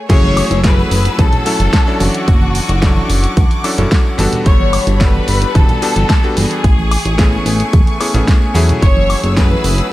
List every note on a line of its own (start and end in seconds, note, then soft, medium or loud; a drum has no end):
0.09 0.42 F#1 loud
0.09 0.59 F#3 loud
0.09 0.59 A3 medium
0.09 1.99 A3 medium
0.09 0.59 C#4 medium
0.09 0.59 E4 medium
0.09 0.59 G#4 loud
0.09 0.60 C#5 loud
0.09 6.60 F#5 medium
0.09 1.99 E6 medium
0.09 kick loud
0.09 closed hi-hat medium
0.09 tambourine medium
0.09 crash loud
0.24 high conga medium
0.36 open hi-hat loud
0.36 tambourine medium
0.36 high woodblock medium
0.51 0.83 F#1 medium
0.51 closed hi-hat medium
0.51 tambourine soft
0.51 high bongo soft
0.64 1.15 F#3 medium
0.64 1.15 A3 medium
0.64 1.15 C#4 medium
0.64 1.16 E4 medium
0.64 1.16 G#4 medium
0.64 1.19 B4 loud
0.64 kick loud
0.64 snare loud
0.64 closed hi-hat medium
0.64 tambourine soft
0.78 tambourine soft
0.78 high conga medium
0.91 1.08 F#1 medium
0.91 open hi-hat medium
0.91 tambourine medium
1.05 closed hi-hat medium
1.05 tambourine soft
1.05 high bongo medium
1.18 1.27 C#2 medium
1.18 1.43 F#3 medium
1.18 1.43 A3 medium
1.18 1.43 C#4 medium
1.18 1.43 E4 medium
1.18 1.43 G#4 medium
1.18 2.00 A4 loud
1.18 kick loud
1.18 closed hi-hat medium
1.18 tambourine medium
1.18 high conga medium
1.32 closed hi-hat soft
1.32 tambourine soft
1.32 low conga loud
1.45 1.84 F#3 medium
1.45 1.84 A3 medium
1.45 1.84 C#4 medium
1.45 1.84 E4 medium
1.45 1.84 A4 loud
1.45 open hi-hat loud
1.45 tambourine medium
1.45 high bongo medium
1.60 1.68 F#1 medium
1.60 closed hi-hat medium
1.60 tambourine soft
1.60 high conga medium
1.73 kick loud
1.73 snare loud
1.73 closed hi-hat medium
1.73 tambourine medium
1.86 2.79 F#3 medium
1.86 2.79 C#4 medium
1.86 2.79 D4 medium
1.86 2.79 E4 medium
1.86 2.80 A4 loud
1.86 tambourine soft
2.00 2.09 F#1 medium
2.00 3.64 F#4 medium
2.00 4.16 C#6 medium
2.00 4.16 D6 medium
2.00 open hi-hat medium
2.00 tambourine medium
2.00 high conga medium
2.13 closed hi-hat medium
2.13 tambourine soft
2.27 2.60 F#1 loud
2.27 kick loud
2.27 closed hi-hat medium
2.27 tambourine soft
2.41 tambourine soft
2.41 high conga loud
2.55 open hi-hat loud
2.55 tambourine medium
2.68 3.01 F#1 medium
2.68 closed hi-hat medium
2.68 tambourine soft
2.68 high bongo medium
2.81 3.60 F#3 medium
2.81 3.61 C#4 medium
2.81 3.61 D4 medium
2.81 3.61 E4 medium
2.81 3.61 A4 loud
2.81 kick loud
2.81 snare loud
2.81 closed hi-hat medium
2.81 tambourine medium
2.96 tambourine soft
2.96 high conga medium
3.10 3.27 F#1 medium
3.10 open hi-hat medium
3.10 tambourine medium
3.24 closed hi-hat medium
3.24 tambourine soft
3.37 3.45 C#2 medium
3.37 kick loud
3.37 closed hi-hat medium
3.37 tambourine medium
3.37 high conga loud
3.51 closed hi-hat soft
3.51 tambourine soft
3.64 3.75 F#3 medium
3.64 3.75 C#4 medium
3.64 3.75 D4 medium
3.64 3.75 E4 medium
3.64 3.75 A4 medium
3.64 open hi-hat loud
3.64 tambourine medium
3.64 high woodblock medium
3.78 3.86 F#1 medium
3.78 4.15 F#3 medium
3.78 4.15 C#4 medium
3.78 4.15 D4 medium
3.78 4.16 E4 medium
3.78 4.16 A4 medium
3.78 closed hi-hat medium
3.78 tambourine soft
3.78 high bongo soft
3.78 high conga medium
3.78 low conga medium
3.92 kick loud
3.92 snare loud
3.92 closed hi-hat medium
3.92 tambourine soft
4.05 tambourine soft
4.18 4.27 G1 medium
4.18 4.97 G3 loud
4.18 6.62 G3 medium
4.18 4.97 B3 medium
4.18 4.97 D4 medium
4.18 4.98 F#4 medium
4.18 4.98 A4 loud
4.18 6.62 B5 medium
4.18 open hi-hat medium
4.18 tambourine medium
4.18 high bongo soft
4.18 high conga loud
4.32 closed hi-hat soft
4.32 tambourine soft
4.32 low conga medium
4.46 4.79 G1 loud
4.46 4.91 C#5 loud
4.46 kick loud
4.46 closed hi-hat medium
4.46 tambourine medium
4.60 high conga medium
4.73 open hi-hat loud
4.73 tambourine medium
4.73 high woodblock medium
4.87 5.20 G1 medium
4.87 closed hi-hat medium
4.87 tambourine soft
4.87 high bongo soft
4.93 5.00 C#5 medium
5.00 5.51 G3 medium
5.00 5.52 B3 medium
5.00 5.52 D4 medium
5.00 5.52 F#4 medium
5.00 5.52 A4 medium
5.00 5.55 B4 loud
5.00 kick loud
5.00 snare loud
5.00 closed hi-hat medium
5.00 tambourine medium
5.14 tambourine soft
5.14 high conga medium
5.28 5.45 G1 medium
5.28 open hi-hat loud
5.28 tambourine medium
5.42 closed hi-hat medium
5.42 tambourine soft
5.42 high bongo medium
5.55 5.64 D1 medium
5.55 5.79 G3 medium
5.55 5.79 B3 medium
5.55 5.79 D4 medium
5.55 5.79 F#4 medium
5.55 6.37 A4 loud
5.55 5.79 A4 medium
5.55 kick loud
5.55 closed hi-hat medium
5.55 tambourine soft
5.55 high conga loud
5.69 closed hi-hat soft
5.69 tambourine soft
5.69 low conga loud
5.82 6.20 G3 medium
5.82 6.20 B3 medium
5.82 6.20 D4 medium
5.82 6.20 F#4 medium
5.82 6.20 A4 loud
5.82 open hi-hat loud
5.82 tambourine medium
5.82 high bongo medium
5.96 6.04 G1 medium
5.96 closed hi-hat medium
5.96 tambourine soft
5.96 high conga medium
6.09 kick loud
6.09 snare loud
6.09 closed hi-hat medium
6.09 tambourine soft
6.23 6.62 G3 medium
6.23 6.62 B3 medium
6.23 6.63 D4 medium
6.23 6.63 F#4 medium
6.23 6.63 A4 loud
6.23 tambourine soft
6.37 6.46 G1 loud
6.37 8.01 G#4 loud
6.37 open hi-hat loud
6.37 tambourine medium
6.37 high conga medium
6.51 closed hi-hat soft
6.51 tambourine soft
6.64 6.97 A1 loud
6.64 8.80 A3 medium
6.64 8.80 G#5 medium
6.64 8.80 C#6 medium
6.64 kick loud
6.64 closed hi-hat medium
6.64 tambourine medium
6.79 tambourine soft
6.79 high conga medium
6.91 open hi-hat loud
6.91 tambourine medium
6.91 high woodblock medium
7.05 7.38 A1 medium
7.05 closed hi-hat medium
7.05 tambourine soft
7.05 high bongo medium
7.18 7.97 A3 medium
7.18 7.97 B3 medium
7.18 7.97 C#4 medium
7.18 7.97 E4 medium
7.18 7.98 G#4 medium
7.18 kick loud
7.18 snare loud
7.18 closed hi-hat medium
7.18 tambourine medium
7.32 tambourine soft
7.32 high conga medium
7.46 7.63 A1 medium
7.46 open hi-hat loud
7.46 tambourine medium
7.60 closed hi-hat medium
7.60 tambourine soft
7.73 7.82 E1 medium
7.73 kick loud
7.73 closed hi-hat medium
7.73 tambourine medium
7.73 high conga loud
7.87 closed hi-hat soft
7.87 tambourine soft
8.00 8.11 A3 medium
8.00 8.11 B3 medium
8.00 8.11 C#4 medium
8.00 8.11 E4 medium
8.00 8.11 G#4 medium
8.00 open hi-hat loud
8.00 tambourine medium
8.00 high woodblock medium
8.14 8.23 A1 medium
8.14 8.52 A3 medium
8.14 8.52 B3 medium
8.14 8.52 C#4 medium
8.14 8.52 E4 medium
8.14 8.52 G#4 medium
8.14 closed hi-hat soft
8.14 tambourine soft
8.14 high bongo soft
8.14 high conga medium
8.14 low conga medium
8.28 kick loud
8.28 snare loud
8.28 closed hi-hat medium
8.28 tambourine medium
8.42 tambourine soft
8.54 8.72 E2 medium
8.54 9.33 F#3 loud
8.54 9.33 A3 medium
8.54 9.34 C#4 medium
8.54 9.34 E4 medium
8.54 9.34 G#4 loud
8.54 open hi-hat medium
8.54 tambourine medium
8.54 high bongo soft
8.54 high conga medium
8.68 closed hi-hat soft
8.68 tambourine soft
8.68 low conga medium
8.82 9.15 F#1 loud
8.82 9.92 A3 medium
8.82 9.33 C#5 loud
8.82 9.92 F#5 medium
8.82 9.92 E6 medium
8.82 kick loud
8.82 closed hi-hat medium
8.82 tambourine soft
8.97 high conga medium
9.10 open hi-hat loud
9.10 tambourine medium
9.10 high woodblock medium
9.23 9.56 F#1 loud
9.23 closed hi-hat soft
9.23 tambourine soft
9.23 high bongo soft
9.36 9.88 F#3 medium
9.36 9.88 A3 medium
9.36 9.88 C#4 medium
9.36 9.88 E4 medium
9.36 9.89 G#4 medium
9.36 9.91 B4 loud
9.36 kick loud
9.36 snare loud
9.36 closed hi-hat medium
9.36 tambourine medium
9.51 tambourine soft
9.51 high conga medium
9.64 9.81 F#1 medium
9.64 open hi-hat medium
9.64 tambourine loud
9.78 closed hi-hat medium
9.78 tambourine soft
9.78 high bongo medium